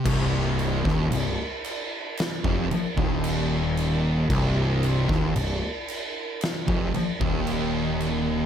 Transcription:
<<
  \new Staff \with { instrumentName = "Distorted electric guitar" } { \clef bass \time 4/4 \key c \minor \tempo 4 = 57 c,8. ees,16 c,16 r4 f,16 r16 ees,4~ ees,16 | c,8. ees,16 c,16 r4 f,16 r16 ees,4~ ees,16 | }
  \new Staff \with { instrumentName = "Distorted electric guitar" } { \clef bass \time 4/4 \key c \minor c,8. ees,16 c,16 r4 f,16 r16 ees,4~ ees,16 | c,8. ees,16 c,16 r4 f,16 r16 ees,4~ ees,16 | }
  \new Staff \with { instrumentName = "Picked electric bass" } { \clef bass \time 4/4 \key c \minor c,,8. ees,,16 c,,16 r4 f,,16 r16 ees,,4~ ees,,16 | c,,8. ees,,16 c,,16 r4 f,,16 r16 ees,,4~ ees,,16 | }
  \new DrumStaff \with { instrumentName = "Drums" } \drummode { \time 4/4 <cymc bd>8 cymc16 <bd sn>16 cymc8 cymc8 <cymc sn>16 bd16 cymc16 bd16 cymc8 cymc8 | <cymc bd>8 cymc16 <bd sn>16 cymc8 cymc8 <cymc sn>16 bd16 cymc16 bd16 cymc8 cymc8 | }
>>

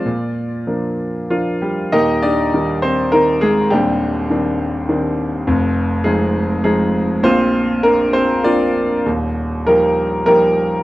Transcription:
<<
  \new Staff \with { instrumentName = "Grand piano" } { \time 3/4 \key ees \major \tempo 4 = 100 <f' d''>2 f'8 <g g'>8 | <ees' g' bes' ees''>8 <d' g' d''>4 <c' c''>8 bes'8 <aes aes'>8 | <g c' d' g'>2 r4 | r4 <ees' aes'>4 <ees' aes'>4 |
<c' f' c''>4 bes'8 <c' c''>8 <f' d''>8. r16 | r4 <bes g' bes'>4 <bes g' bes'>4 | }
  \new Staff \with { instrumentName = "Grand piano" } { \clef bass \time 3/4 \key ees \major bes,4 <f bes d'>4 <f bes d'>4 | <ees,, ees,>4 <ees g bes>4 <ees bes ees'>4 | <ees,, ees,>4 <ees c' d'>4 <ees c' d'>4 | <f,, f,>4 <f aes>4 <f aes>4 |
<bes,, bes,>4 <bes c' d'>4 <bes c' d'>4 | <ees,, ees,>4 <f g ees'>4 <f g ees'>4 | }
>>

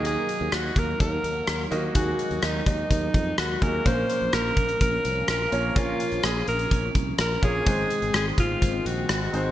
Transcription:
<<
  \new Staff \with { instrumentName = "Alto saxophone" } { \time 4/4 \key ees \dorian \tempo 4 = 126 aes'4 ges'8 bes'8 bes'4. r8 | ges'4 ees'8 ees'4. ges'8 bes'8 | c''4 bes'4 bes'4 bes'4 | f'4 aes'8 bes'4 r8 bes'8 aes'8~ |
aes'4 aes'8 f'4 ges'4. | }
  \new Staff \with { instrumentName = "Grand piano" } { \time 4/4 \key ees \dorian <bes ees' ges' ees''>4. r2 <bes ees' ges' ees''>8 | <bes ees' ges' aes'>2 r4. <bes ees' ges' aes'>8 | <bes des' f' bes'>2 r4. <bes des' f' des''>8 | <bes des' f' bes'>2 r4. <bes des' f' des''>8 |
<aes c' ees' c''>2 r4. <aes c' ees' c''>8 | }
  \new Staff \with { instrumentName = "Grand piano" } { \clef bass \time 4/4 \key ees \dorian ees4 r2 r8 ees8~ | ees4 r2. | bes,4. r2 r8 | bes,4. r2 r8 |
aes,4. r2 r8 | }
  \new Staff \with { instrumentName = "Analog synth pad" } { \time 4/4 \key ees \dorian << { bes2.~ bes8 aes8~ | aes1 | <bes des'>1~ | <bes des'>1 |
<aes c'>1 | } \\ { <ges ees'>1~ | <ges ees'>1 | f1~ | f1 |
ees1 | } >> }
  \new Staff \with { instrumentName = "Fretless electric bass" } { \clef bass \time 4/4 \key ees \dorian ees,8 r16 ees,16 ees,8 ees,8 ees,8 ees,8 ees,8 ees,8 | ees,8 r16 ees,16 ees,8 ees,8 ees,8 f,8 ees,8 ees,8 | bes,,8 r16 bes,,16 bes,,8 bes,,8 bes,,8 c,8 bes,,8 bes,,8 | bes,,8 r16 bes,,16 bes,,8 bes,,8 bes,,8 c,8 bes,,8 bes,,8 |
aes,,8 r16 aes,,16 aes,,8 aes,,8 aes,,8 bes,,8 aes,,8 aes,,8 | }
  \new DrumStaff \with { instrumentName = "Drums" } \drummode { \time 4/4 hh8 hh8 <hh ss>8 <hh bd>8 <hh bd>8 hh8 <hh ss>8 hh8 | <hh bd>8 hh16 hh16 <hh ss>8 <hh bd>8 <hh bd>8 <hh bd>8 <hh ss>8 <hh bd>8 | <hh bd>8 hh8 <hh ss>8 <hh bd>16 hh16 <hh bd>8 hh8 <hh ss>8 hh8 | <hh bd>8 hh16 hh16 <hh ss>8 hh16 hh16 <hh bd>8 <hh bd>8 <hh ss>8 <hh bd>8 |
<hh bd>8 hh16 hh16 <hh ss>8 <hh bd>8 <hh bd>8 hh8 <hh ss>8 hh8 | }
>>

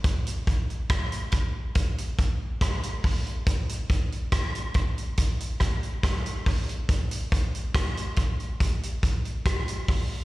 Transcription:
\new DrumStaff \with { instrumentName = "Drums" } \drummode { \time 4/4 \tempo 4 = 70 <hh bd>16 hh16 <hh bd>16 hh16 <hh bd ss>16 hh16 <hh bd>8 <hh bd>16 hh16 <hh bd>8 <hh bd ss>16 hh16 <hho bd>16 hh16 | <hh bd>16 hh16 <hh bd>16 hh16 <hh bd ss>16 hh16 <hh bd>16 hh16 <hh bd>16 hh16 <hh bd ss>16 hh16 <hh bd ss>16 hh16 <hho bd>16 hh16 | <hh bd>16 hh16 <hh bd>16 hh16 <hh bd ss>16 hh16 <hh bd>16 hh16 <hh bd>16 hh16 <hh bd>16 hh16 <hh bd ss>16 hh16 <hho bd>8 | }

